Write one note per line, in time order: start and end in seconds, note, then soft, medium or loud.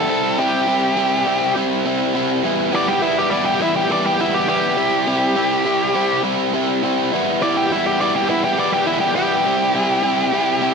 0.00 0.38 A4 medium
0.09 0.37 C3 medium
0.09 0.39 G3 medium
0.09 0.38 C4 loud
0.09 0.39 E4 loud
0.39 0.66 C3 medium
0.39 0.67 G3 medium
0.39 0.67 C4 medium
0.39 0.68 E4 medium
0.39 1.52 G4 loud
0.67 0.96 C3 medium
0.67 0.97 G3 medium
0.67 0.96 C4 loud
0.67 0.98 E4 medium
0.97 1.25 C3 medium
0.97 1.26 G3 loud
0.97 1.26 C4 loud
0.97 1.27 E4 loud
1.26 1.55 C3 loud
1.26 1.56 G3 loud
1.26 1.55 C4 loud
1.26 1.57 E4 loud
1.56 1.84 C3 medium
1.56 1.85 G3 medium
1.56 1.85 C4 loud
1.56 1.86 E4 medium
1.85 2.13 C3 loud
1.85 2.15 G3 loud
1.85 2.15 C4 loud
1.85 2.15 E4 loud
2.14 2.42 C3 medium
2.14 2.44 G3 medium
2.14 2.42 C4 loud
2.14 2.45 E4 medium
2.44 2.72 E3 medium
2.44 2.73 G3 loud
2.44 2.73 B3 loud
2.44 2.73 E4 loud
2.72 3.02 E3 medium
2.72 3.02 G3 medium
2.72 3.02 B3 medium
2.72 3.03 E4 loud
2.72 2.88 D5 medium
2.88 3.02 G4 medium
3.02 3.31 E3 medium
3.02 3.32 G3 loud
3.02 3.32 B3 loud
3.02 3.18 E4 medium
3.02 3.32 E4 loud
3.18 3.31 G4 medium
3.30 3.59 E3 medium
3.30 3.60 G3 loud
3.30 3.60 B3 medium
3.30 3.61 E4 loud
3.30 3.45 D5 medium
3.45 3.59 G4 medium
3.60 3.88 E3 medium
3.60 3.89 G3 loud
3.60 3.89 B3 loud
3.60 3.89 E4 loud
3.60 3.75 E4 medium
3.76 3.89 G4 medium
3.89 4.18 E3 medium
3.89 4.18 G3 loud
3.89 4.18 B3 loud
3.89 4.19 E4 loud
3.89 4.05 D5 loud
4.05 4.21 G4 medium
4.18 4.47 E3 medium
4.18 4.48 G3 loud
4.18 4.48 B3 loud
4.18 4.48 E4 loud
4.18 4.34 E4 loud
4.34 4.48 G4 medium
4.48 4.77 E3 medium
4.48 4.77 G3 medium
4.48 4.78 B3 medium
4.48 4.78 E4 medium
4.48 6.20 G4 loud
4.77 5.06 C3 medium
4.77 5.07 G3 medium
4.77 5.06 C4 loud
4.77 5.07 E4 loud
5.07 5.35 C3 medium
5.07 5.36 G3 medium
5.07 5.36 C4 medium
5.07 5.37 E4 medium
5.36 5.64 C3 medium
5.36 5.65 G3 medium
5.36 5.65 C4 loud
5.36 5.66 E4 loud
5.65 5.93 C3 medium
5.65 5.95 G3 loud
5.65 5.94 C4 loud
5.65 5.95 E4 medium
5.95 6.22 C3 medium
5.95 6.24 G3 medium
5.95 6.23 C4 medium
5.95 6.24 E4 loud
6.23 6.53 C3 medium
6.23 6.54 G3 medium
6.23 6.54 C4 loud
6.23 6.55 E4 medium
6.54 6.82 C3 loud
6.54 6.84 G3 loud
6.54 6.83 C4 loud
6.54 6.84 E4 loud
6.83 7.10 C3 medium
6.83 7.13 G3 medium
6.83 7.10 C4 medium
6.83 7.13 E4 loud
7.13 7.42 E3 medium
7.13 7.42 G3 medium
7.13 7.43 B3 medium
7.13 7.43 E4 loud
7.42 7.71 E3 medium
7.42 7.72 G3 medium
7.42 7.72 B3 medium
7.42 7.72 E4 medium
7.42 7.55 D5 loud
7.57 7.72 G4 medium
7.71 8.00 E3 medium
7.71 8.01 G3 medium
7.71 8.00 B3 loud
7.71 7.86 E4 medium
7.71 8.01 E4 loud
7.86 7.99 G4 medium
8.00 8.27 E3 medium
8.00 8.28 G3 medium
8.00 8.28 B3 loud
8.00 8.29 E4 medium
8.00 8.14 D5 medium
8.16 8.29 G4 loud
8.28 8.58 E3 medium
8.28 8.57 G3 medium
8.28 8.58 B3 loud
8.28 8.59 E4 loud
8.28 8.43 E4 medium
8.44 8.58 G4 medium
8.58 8.87 E3 medium
8.58 8.87 G3 loud
8.58 8.88 B3 medium
8.58 8.88 E4 loud
8.58 8.72 D5 loud
8.72 8.86 G4 medium
8.86 9.16 E3 medium
8.86 9.16 G3 loud
8.86 9.16 B3 medium
8.86 9.00 E4 medium
8.86 9.17 E4 loud
9.00 9.14 G4 medium
9.16 9.45 E3 medium
9.16 9.46 G3 medium
9.16 9.46 B3 medium
9.16 9.46 E4 medium
9.16 10.74 G4 medium
9.46 9.73 C3 medium
9.46 9.75 G3 loud
9.46 9.74 C4 medium
9.46 9.75 E4 loud
9.75 10.02 C3 medium
9.75 10.03 G3 medium
9.75 10.03 C4 medium
9.75 10.04 E4 loud
10.03 10.31 C3 medium
10.03 10.33 G3 medium
10.03 10.32 C4 loud
10.03 10.34 E4 loud
10.33 10.61 C3 medium
10.33 10.61 G3 medium
10.33 10.61 C4 medium
10.33 10.62 E4 loud
10.62 10.74 C3 loud
10.62 10.74 G3 loud
10.62 10.74 C4 loud
10.62 10.74 E4 loud